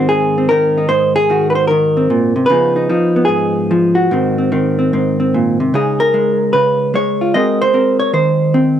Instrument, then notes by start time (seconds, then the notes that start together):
hollow-body jazz guitar
Already playing: G#2 D#3 C4 D#4
0.09 G#2 G#4
0.38 C4
0.49 D#3 A#4
0.78 D#4
0.89 G#2 C5
1.16 G#4
1.30 D#3 F#4
1.50 B4
1.55 C5
1.67 D#3 A#4
1.97 C4
2.10 A#2
2.36 C3
2.46 C#3 B4
2.50 F3 B3 D#4
2.76 D#4
2.89 F3 D#4
3.16 B3
3.25 G#2 G#4
3.71 F3
3.95 F#4
4.11 G#2 D#3 C4
4.38 C4
4.52 D#3 C4
4.79 C4
4.93 G#2 C4
5.20 C4
5.34 A#2
5.60 C3
5.74 C#3 G#3 D#4 G#4
6.00 A#4
6.14 G#3
6.53 C#3 B4
6.94 G#3 C#5
7.21 F4
7.34 G#3 C4 F#4 A#4 D#5
7.62 C5
7.74 C4 A#4
7.99 C#5
8.13 D#3 C5
8.54 C4